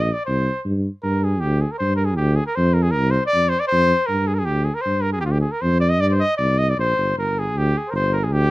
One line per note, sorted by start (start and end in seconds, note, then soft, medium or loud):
0.00 0.11 A#1 medium
0.00 0.15 D#5 medium
0.14 0.25 D5 medium
0.26 0.48 C2 medium
0.26 0.62 C5 medium
0.65 0.87 G2 medium
1.03 1.45 G2 medium
1.03 1.25 A#4 medium
1.24 1.42 G#4 medium
1.40 1.64 D2 loud
1.40 1.63 G4 medium
1.61 1.73 G#4 medium
1.71 1.78 A#4 medium
1.78 2.19 G2 medium
1.78 1.95 C5 medium
1.96 2.06 A#4 medium
2.05 2.16 G#4 medium
2.16 2.39 D2 loud
2.16 2.37 G4 medium
2.36 2.46 G#4 medium
2.46 2.57 A#4 medium
2.55 2.98 F2 loud
2.55 2.75 C5 loud
2.74 2.84 A#4 medium
2.83 2.93 G#4 medium
2.91 3.12 A#4 medium
2.97 3.17 C2 loud
3.11 3.26 C5 medium
3.26 3.51 D5 loud
3.34 3.55 F2 medium
3.49 3.61 C5 loud
3.60 3.67 D5 medium
3.67 4.08 C5 loud
3.72 3.93 F2 medium
4.06 4.50 G2 medium
4.06 4.29 A#4 medium
4.27 4.36 G#4 medium
4.34 4.40 A#4 medium
4.39 4.47 G#4 medium
4.45 4.69 D2 medium
4.45 4.66 G4 loud
4.64 4.76 G#4 medium
4.75 4.83 A#4 loud
4.81 5.04 C5 medium
4.86 5.25 G2 medium
5.02 5.12 A#4 medium
5.13 5.20 G#4 medium
5.21 5.45 D2 loud
5.21 5.27 G4 medium
5.25 5.33 F4 medium
5.31 5.40 G4 medium
5.41 5.53 G#4 medium
5.52 5.63 A#4 medium
5.61 6.02 F2 loud
5.61 5.80 C5 medium
5.80 5.91 D5 loud
5.89 6.02 D#5 loud
6.00 6.22 G2 loud
6.00 6.08 D5 loud
6.08 6.21 C5 medium
6.08 6.13 D5 medium
6.20 6.37 D#5 loud
6.37 6.77 C2 loud
6.37 6.60 D5 medium
6.59 6.71 D#5 loud
6.70 6.78 D5 medium
6.77 6.95 A#1 medium
6.77 7.14 C5 loud
6.97 7.14 G1 medium
7.16 7.55 G1 medium
7.16 7.41 A#4 medium
7.39 7.59 G#4 medium
7.54 7.75 D2 loud
7.54 7.79 G4 loud
7.78 7.89 G#4 medium
7.88 7.94 A#4 medium
7.88 7.92 C5 medium
7.92 8.31 G1 loud
7.92 8.14 C5 loud
8.13 8.25 A#4 medium
8.24 8.34 G#4 medium
8.30 8.51 D2 loud
8.30 8.51 G4 loud